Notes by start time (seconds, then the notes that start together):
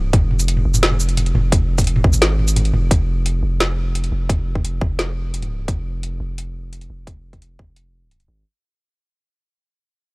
Already playing: F1
0.13 F1, kick, closed hi-hat, mid tom
0.31 mid tom
0.39 closed hi-hat, shaker
0.48 closed hi-hat
0.57 mid tom
0.65 F1
0.74 mid tom, shaker
0.83 snare, closed hi-hat
0.91 mid tom
1.00 shaker
1.09 closed hi-hat
1.17 closed hi-hat, mid tom
1.26 closed hi-hat
1.35 F1, mid tom
1.52 kick, closed hi-hat, mid tom
1.78 kick, closed hi-hat, mid tom, shaker
1.81 closed hi-hat
1.84 closed hi-hat
1.87 closed hi-hat
1.96 mid tom
2.04 G#1, kick
2.13 mid tom, shaker
2.22 snare, closed hi-hat
2.39 mid tom
2.48 closed hi-hat, shaker
2.56 closed hi-hat, mid tom
2.65 closed hi-hat
2.74 F1, mid tom
2.91 F1, kick, closed hi-hat
3.26 closed hi-hat
3.43 F1
3.60 snare, closed hi-hat
3.95 closed hi-hat
4.04 closed hi-hat
4.12 F1
4.29 kick, closed hi-hat
4.55 kick
4.65 closed hi-hat
4.81 F1, kick
4.99 snare, closed hi-hat
5.34 closed hi-hat
5.42 closed hi-hat, mid tom
5.68 F1, kick, closed hi-hat
6.03 closed hi-hat
6.20 F1
6.38 closed hi-hat
6.73 closed hi-hat
6.81 closed hi-hat
6.90 F1
7.07 kick, closed hi-hat
7.33 kick, closed hi-hat
7.42 closed hi-hat
7.59 F1, kick
7.76 closed hi-hat
8.11 closed hi-hat
8.20 closed hi-hat
8.28 G#1